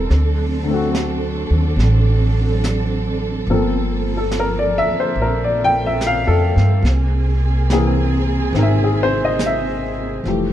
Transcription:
Already playing: A3 C4 G4 A4 A#4 C5 D5 E5
0.10 D2 D4, brush sweep, snare
0.15 F#3
0.64 D3
0.68 A3 C4
0.74 F#4
0.95 snare, hi-hat pedal
1.50 D#2
1.76 A1, brush sweep, snare
2.64 snare, hi-hat pedal
3.47 G1 F3 A#3 C4 A4, brush sweep
4.17 A4
4.31 snare, hi-hat pedal
4.40 A#4
4.59 D5
4.78 E5
4.88 muted upright bass stroke
5.00 C5
5.16 A#1, brush sweep
5.22 A#4
5.44 D5
5.64 G5
5.86 E5
6.01 snare, hi-hat pedal
6.07 F5
6.27 F2 A4
6.56 G2, snare
6.83 C2 C3 C4 G#4, brush sweep, snare
7.70 E3 A#3 C4 G#4, snare, hi-hat pedal
8.53 G#1 D#3 C4, brush sweep, snare
8.58 A#4
8.62 E5
8.84 G#4
9.03 C5
9.25 D#5
9.39 snare, hi-hat pedal
9.46 E5
10.24 F1 E3 F3 G3 A3 C4 G4, brush sweep, snare
10.28 A3 G4

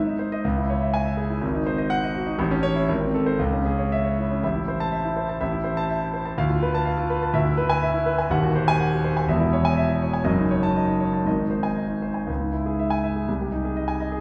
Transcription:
Already playing: G#2
0.07 D#4
0.19 C5
0.32 D#5
0.45 C#2
0.58 E4
0.70 C#5
0.82 E5
0.94 G#5
1.06 E5
1.17 G#4
1.30 E4
1.41 G#1
1.55 D#4
1.67 C5
1.78 D#5
1.90 F#5
2.04 D#5
2.15 F#4
2.26 D#4
2.39 A1
2.51 C#4
2.63 C#5
2.75 E4
2.89 G#1
3.01 C4
3.15 A4
3.26 C5
3.39 C#2
3.53 C#4
3.65 G#4
3.79 C#5
3.92 E5
4.05 C#5
4.18 E4
4.31 C#4
4.43 A1 E5
4.55 E4
4.68 C5
4.80 A5
4.92 E5
5.05 E4
5.16 C5
5.29 A5
5.41 A1 E5
5.52 E4
5.64 C5
5.77 A5
5.89 E5
6.01 E4
6.14 C5
6.25 A5
6.38 D2 F5
6.50 F4
6.62 B4
6.75 A5
6.86 F5
6.98 F4
7.10 B4
7.23 A5
7.34 D2 E5
7.45 E4
7.57 B4
7.69 G#5
7.82 E5
7.94 E4
8.06 B4
8.18 G#5
8.30 D#1 D#2 F#5
8.43 F#4
8.56 C5
8.68 G#5
8.80 F#5
8.92 F#4
9.04 C5
9.17 G#5
9.28 E1 E2 E5
9.40 E4
9.53 C#5
9.65 G#5
9.77 E5
9.89 E4
10.02 C#5
10.13 G#5
10.24 F#1 F#2 D#5
10.38 D#4
10.51 C#5
10.63 D#4 A5
10.76 D#5
10.88 D#4
11.00 C#5
11.13 A5
11.25 G#1 G#2 D#5
11.38 D#4
11.50 C5
11.63 D#4 G#5
11.76 D#5
11.88 D#4
12.02 C5
12.14 G#5
12.27 C#2
12.40 G#2
12.53 E4
12.66 G#4
12.79 E5
12.90 G#5
13.04 E5
13.16 G#4
13.28 C2
13.41 C3
13.52 D#4
13.65 G#4
13.77 D#5
13.88 G#5
14.00 D#5
14.12 G#4

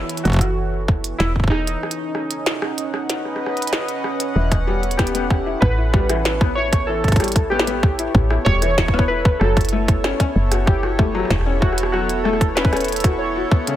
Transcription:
Already playing: E3 B3 E4 A4 C#5
0.09 closed hi-hat
0.17 closed hi-hat
0.24 F#1 F#4, kick, closed hi-hat
0.27 kick
0.30 kick
0.32 kick, closed hi-hat
0.34 kick
0.36 kick
0.39 kick, cross-stick, closed hi-hat
0.88 kick
1.04 closed hi-hat
1.18 E1 E4, snare
1.36 kick
1.40 kick
1.44 kick
1.48 D#4, kick, cross-stick
1.67 closed hi-hat
1.83 C#4, cross-stick
1.91 closed hi-hat
2.15 cross-stick
2.31 closed hi-hat
2.46 F#5, snare
2.62 cross-stick
2.78 closed hi-hat
2.94 B4 D#5, cross-stick
3.10 snare, closed hi-hat
3.25 cross-stick
3.36 cross-stick
3.46 cross-stick
3.57 closed hi-hat
3.62 closed hi-hat
3.67 closed hi-hat
3.73 cross-stick, snare
3.88 closed hi-hat
4.04 cross-stick
4.20 closed hi-hat
4.36 E1 E3 B3
4.52 kick, cross-stick, closed hi-hat
4.67 G3
4.74 A4
4.83 closed hi-hat
4.91 E4, closed hi-hat
4.97 B3 G4, kick, cross-stick, snare, closed hi-hat
5.07 closed hi-hat
5.15 B3, closed hi-hat
5.30 kick, cross-stick
5.46 E4
5.61 A1 B4, kick, cross-stick
5.78 E4
5.94 G3, kick
6.09 E3, cross-stick, closed hi-hat
6.25 snare
6.35 C#5
6.41 B3, kick, cross-stick
6.55 E4 C#5
6.73 kick, cross-stick, closed hi-hat
6.87 E3 A4
7.04 kick, closed hi-hat
7.08 kick, closed hi-hat
7.12 kick, closed hi-hat
7.16 kick, closed hi-hat
7.20 G3, cross-stick, closed hi-hat
7.24 closed hi-hat
7.28 closed hi-hat
7.32 kick, closed hi-hat
7.36 closed hi-hat
7.50 B3 G4, cross-stick
7.59 snare
7.67 B3, closed hi-hat
7.83 kick
7.99 E4, closed hi-hat
8.15 A1, kick
8.30 E4, cross-stick
8.45 E1 G3 C#5, kick
8.62 E3, cross-stick, closed hi-hat
8.78 kick, snare
8.88 kick
8.94 B3, cross-stick
8.99 kick
9.08 E4 B4
9.25 kick
9.40 F#1 F#3 A4, cross-stick
9.57 kick, closed hi-hat
9.61 closed hi-hat
9.65 closed hi-hat
9.69 A3, closed hi-hat
9.88 kick, closed hi-hat
10.04 C#4, cross-stick, snare
10.20 C#4, kick, closed hi-hat
10.36 F#1
10.52 F#4, cross-stick, closed hi-hat
10.66 G4, kick
10.83 F#4, cross-stick
10.99 A3, kick
11.15 F#3, cross-stick
11.20 cross-stick
11.25 cross-stick
11.30 E1, kick, cross-stick, snare
11.36 cross-stick
11.41 cross-stick
11.46 C#4
11.61 F#4, kick, cross-stick
11.73 cross-stick
11.78 closed hi-hat
11.83 cross-stick
11.92 F#3 F#4, cross-stick
12.09 closed hi-hat
12.24 A3 A4, cross-stick
12.33 cross-stick
12.41 kick, cross-stick, closed hi-hat
12.49 cross-stick
12.55 C#4 B4, snare
12.65 kick
12.73 C#4, cross-stick, closed hi-hat
12.77 closed hi-hat
12.81 closed hi-hat
12.84 closed hi-hat
12.88 closed hi-hat
12.92 closed hi-hat
12.96 closed hi-hat
13.00 F#4, kick, cross-stick, closed hi-hat
13.04 closed hi-hat
13.18 C#5
13.36 F#4
13.52 B3, kick
13.67 C#3, closed hi-hat

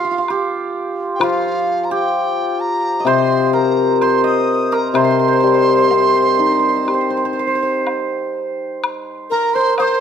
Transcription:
Already playing: G4 F5
0.05 F4
0.11 F4
0.18 F4
0.28 G4, high woodblock
1.15 G5
1.20 F3 F4 F5, high woodblock
1.84 A#5
1.91 G4 G5
2.60 A#5
3.00 D#5
3.05 C3 C5 C6, high woodblock
3.53 A#4 A#5
4.01 C5 C6, high woodblock
4.24 D#5 D#6
4.72 A#4 A#5
4.94 C3 C5 C6, high woodblock
5.04 C5
5.11 C5
5.19 C5
5.28 C5
5.33 C5
5.40 G3 C5
5.47 C5
5.54 C5
5.62 C5
5.69 C5
5.78 C5
5.86 C5
5.91 C4 C5, low woodblock
6.00 C5
6.08 C5
6.15 C5
6.22 C5
6.28 C5
6.37 D#4 C5
6.46 C5
6.52 C5
6.59 C5
6.69 C5
6.76 C5
6.85 G4 C5, high woodblock
6.94 C5
7.01 C5
7.10 C5
7.17 C5
7.25 C5
7.33 C5
7.39 C5
7.47 C5
7.55 C5
7.63 C5
7.87 high woodblock, low woodblock
8.84 high woodblock
9.30 A#4 A#5
9.53 C5 C6
9.78 C5 D#6, high woodblock, low woodblock
9.82 C6

